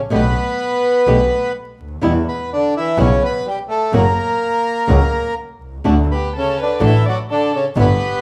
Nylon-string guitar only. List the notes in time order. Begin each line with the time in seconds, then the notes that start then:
0.10 B2 D3 A3 B3 G4
1.06 B2 D3 A3 B3 G4
2.01 B2 E3 G3 B3 E4
2.97 B2 E3 G3 B3 E4
3.92 C#3 F#3 A#3 C#4 F#4
4.87 C#3 F#3 A#3 C#4 F#4
5.84 D3 A3 D4 F#4
6.80 D3 A3 D4 F#4
7.76 G3 B3 E4